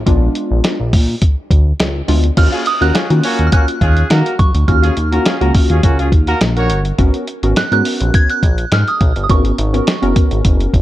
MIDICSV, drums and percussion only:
0, 0, Header, 1, 2, 480
1, 0, Start_track
1, 0, Key_signature, -6, "minor"
1, 0, Tempo, 576923
1, 55, Time_signature, 4, 2, 24, 8
1, 9001, End_track
2, 0, Start_track
2, 0, Title_t, "Drums"
2, 54, Note_on_c, 9, 36, 104
2, 55, Note_on_c, 9, 42, 80
2, 138, Note_off_c, 9, 36, 0
2, 138, Note_off_c, 9, 42, 0
2, 294, Note_on_c, 9, 42, 73
2, 377, Note_off_c, 9, 42, 0
2, 532, Note_on_c, 9, 42, 90
2, 537, Note_on_c, 9, 38, 105
2, 615, Note_off_c, 9, 42, 0
2, 621, Note_off_c, 9, 38, 0
2, 774, Note_on_c, 9, 46, 86
2, 775, Note_on_c, 9, 36, 97
2, 858, Note_off_c, 9, 36, 0
2, 858, Note_off_c, 9, 46, 0
2, 1012, Note_on_c, 9, 42, 121
2, 1014, Note_on_c, 9, 36, 107
2, 1095, Note_off_c, 9, 42, 0
2, 1097, Note_off_c, 9, 36, 0
2, 1253, Note_on_c, 9, 36, 80
2, 1257, Note_on_c, 9, 42, 70
2, 1336, Note_off_c, 9, 36, 0
2, 1340, Note_off_c, 9, 42, 0
2, 1494, Note_on_c, 9, 42, 87
2, 1499, Note_on_c, 9, 38, 114
2, 1578, Note_off_c, 9, 42, 0
2, 1582, Note_off_c, 9, 38, 0
2, 1734, Note_on_c, 9, 46, 68
2, 1817, Note_off_c, 9, 46, 0
2, 1861, Note_on_c, 9, 42, 48
2, 1944, Note_off_c, 9, 42, 0
2, 1972, Note_on_c, 9, 42, 80
2, 1973, Note_on_c, 9, 49, 94
2, 1974, Note_on_c, 9, 36, 108
2, 2056, Note_off_c, 9, 42, 0
2, 2056, Note_off_c, 9, 49, 0
2, 2057, Note_off_c, 9, 36, 0
2, 2100, Note_on_c, 9, 42, 58
2, 2183, Note_off_c, 9, 42, 0
2, 2212, Note_on_c, 9, 42, 73
2, 2295, Note_off_c, 9, 42, 0
2, 2343, Note_on_c, 9, 42, 52
2, 2427, Note_off_c, 9, 42, 0
2, 2453, Note_on_c, 9, 42, 93
2, 2458, Note_on_c, 9, 38, 112
2, 2536, Note_off_c, 9, 42, 0
2, 2541, Note_off_c, 9, 38, 0
2, 2582, Note_on_c, 9, 42, 55
2, 2665, Note_off_c, 9, 42, 0
2, 2692, Note_on_c, 9, 46, 91
2, 2775, Note_off_c, 9, 46, 0
2, 2819, Note_on_c, 9, 42, 58
2, 2902, Note_off_c, 9, 42, 0
2, 2931, Note_on_c, 9, 42, 117
2, 2933, Note_on_c, 9, 36, 117
2, 3014, Note_off_c, 9, 42, 0
2, 3017, Note_off_c, 9, 36, 0
2, 3063, Note_on_c, 9, 42, 59
2, 3146, Note_off_c, 9, 42, 0
2, 3172, Note_on_c, 9, 36, 81
2, 3175, Note_on_c, 9, 42, 71
2, 3255, Note_off_c, 9, 36, 0
2, 3258, Note_off_c, 9, 42, 0
2, 3300, Note_on_c, 9, 42, 49
2, 3383, Note_off_c, 9, 42, 0
2, 3413, Note_on_c, 9, 42, 86
2, 3418, Note_on_c, 9, 38, 119
2, 3496, Note_off_c, 9, 42, 0
2, 3501, Note_off_c, 9, 38, 0
2, 3545, Note_on_c, 9, 42, 51
2, 3628, Note_off_c, 9, 42, 0
2, 3654, Note_on_c, 9, 42, 73
2, 3655, Note_on_c, 9, 36, 95
2, 3737, Note_off_c, 9, 42, 0
2, 3738, Note_off_c, 9, 36, 0
2, 3782, Note_on_c, 9, 42, 50
2, 3865, Note_off_c, 9, 42, 0
2, 3894, Note_on_c, 9, 36, 112
2, 3894, Note_on_c, 9, 42, 81
2, 3977, Note_off_c, 9, 36, 0
2, 3978, Note_off_c, 9, 42, 0
2, 4023, Note_on_c, 9, 42, 58
2, 4106, Note_off_c, 9, 42, 0
2, 4133, Note_on_c, 9, 42, 78
2, 4216, Note_off_c, 9, 42, 0
2, 4264, Note_on_c, 9, 42, 52
2, 4347, Note_off_c, 9, 42, 0
2, 4372, Note_on_c, 9, 42, 92
2, 4378, Note_on_c, 9, 38, 113
2, 4456, Note_off_c, 9, 42, 0
2, 4461, Note_off_c, 9, 38, 0
2, 4504, Note_on_c, 9, 42, 51
2, 4587, Note_off_c, 9, 42, 0
2, 4614, Note_on_c, 9, 46, 85
2, 4615, Note_on_c, 9, 36, 101
2, 4697, Note_off_c, 9, 46, 0
2, 4698, Note_off_c, 9, 36, 0
2, 4740, Note_on_c, 9, 42, 60
2, 4823, Note_off_c, 9, 42, 0
2, 4853, Note_on_c, 9, 42, 113
2, 4854, Note_on_c, 9, 36, 119
2, 4937, Note_off_c, 9, 36, 0
2, 4937, Note_off_c, 9, 42, 0
2, 4985, Note_on_c, 9, 42, 56
2, 5068, Note_off_c, 9, 42, 0
2, 5092, Note_on_c, 9, 36, 84
2, 5096, Note_on_c, 9, 42, 68
2, 5175, Note_off_c, 9, 36, 0
2, 5179, Note_off_c, 9, 42, 0
2, 5219, Note_on_c, 9, 42, 54
2, 5302, Note_off_c, 9, 42, 0
2, 5332, Note_on_c, 9, 42, 92
2, 5336, Note_on_c, 9, 38, 119
2, 5415, Note_off_c, 9, 42, 0
2, 5419, Note_off_c, 9, 38, 0
2, 5463, Note_on_c, 9, 42, 53
2, 5546, Note_off_c, 9, 42, 0
2, 5571, Note_on_c, 9, 42, 79
2, 5655, Note_off_c, 9, 42, 0
2, 5699, Note_on_c, 9, 42, 52
2, 5782, Note_off_c, 9, 42, 0
2, 5812, Note_on_c, 9, 42, 85
2, 5813, Note_on_c, 9, 36, 112
2, 5895, Note_off_c, 9, 42, 0
2, 5896, Note_off_c, 9, 36, 0
2, 5940, Note_on_c, 9, 42, 59
2, 6023, Note_off_c, 9, 42, 0
2, 6053, Note_on_c, 9, 42, 75
2, 6136, Note_off_c, 9, 42, 0
2, 6183, Note_on_c, 9, 42, 55
2, 6266, Note_off_c, 9, 42, 0
2, 6293, Note_on_c, 9, 42, 98
2, 6298, Note_on_c, 9, 38, 113
2, 6376, Note_off_c, 9, 42, 0
2, 6381, Note_off_c, 9, 38, 0
2, 6423, Note_on_c, 9, 42, 58
2, 6506, Note_off_c, 9, 42, 0
2, 6534, Note_on_c, 9, 46, 82
2, 6617, Note_off_c, 9, 46, 0
2, 6660, Note_on_c, 9, 42, 59
2, 6743, Note_off_c, 9, 42, 0
2, 6773, Note_on_c, 9, 42, 117
2, 6774, Note_on_c, 9, 36, 112
2, 6856, Note_off_c, 9, 42, 0
2, 6857, Note_off_c, 9, 36, 0
2, 6902, Note_on_c, 9, 42, 54
2, 6985, Note_off_c, 9, 42, 0
2, 7012, Note_on_c, 9, 36, 82
2, 7015, Note_on_c, 9, 42, 64
2, 7095, Note_off_c, 9, 36, 0
2, 7098, Note_off_c, 9, 42, 0
2, 7139, Note_on_c, 9, 42, 52
2, 7222, Note_off_c, 9, 42, 0
2, 7252, Note_on_c, 9, 42, 93
2, 7257, Note_on_c, 9, 38, 124
2, 7336, Note_off_c, 9, 42, 0
2, 7340, Note_off_c, 9, 38, 0
2, 7385, Note_on_c, 9, 42, 51
2, 7468, Note_off_c, 9, 42, 0
2, 7493, Note_on_c, 9, 42, 72
2, 7495, Note_on_c, 9, 36, 94
2, 7577, Note_off_c, 9, 42, 0
2, 7578, Note_off_c, 9, 36, 0
2, 7621, Note_on_c, 9, 42, 53
2, 7704, Note_off_c, 9, 42, 0
2, 7734, Note_on_c, 9, 36, 122
2, 7734, Note_on_c, 9, 42, 84
2, 7817, Note_off_c, 9, 36, 0
2, 7817, Note_off_c, 9, 42, 0
2, 7861, Note_on_c, 9, 42, 56
2, 7944, Note_off_c, 9, 42, 0
2, 7974, Note_on_c, 9, 42, 78
2, 8057, Note_off_c, 9, 42, 0
2, 8105, Note_on_c, 9, 42, 54
2, 8188, Note_off_c, 9, 42, 0
2, 8213, Note_on_c, 9, 42, 88
2, 8218, Note_on_c, 9, 38, 115
2, 8296, Note_off_c, 9, 42, 0
2, 8302, Note_off_c, 9, 38, 0
2, 8342, Note_on_c, 9, 42, 52
2, 8425, Note_off_c, 9, 42, 0
2, 8453, Note_on_c, 9, 42, 86
2, 8454, Note_on_c, 9, 36, 95
2, 8536, Note_off_c, 9, 42, 0
2, 8538, Note_off_c, 9, 36, 0
2, 8579, Note_on_c, 9, 42, 57
2, 8662, Note_off_c, 9, 42, 0
2, 8692, Note_on_c, 9, 42, 125
2, 8693, Note_on_c, 9, 36, 121
2, 8775, Note_off_c, 9, 42, 0
2, 8777, Note_off_c, 9, 36, 0
2, 8823, Note_on_c, 9, 42, 57
2, 8906, Note_off_c, 9, 42, 0
2, 8932, Note_on_c, 9, 36, 84
2, 8936, Note_on_c, 9, 42, 68
2, 9001, Note_off_c, 9, 36, 0
2, 9001, Note_off_c, 9, 42, 0
2, 9001, End_track
0, 0, End_of_file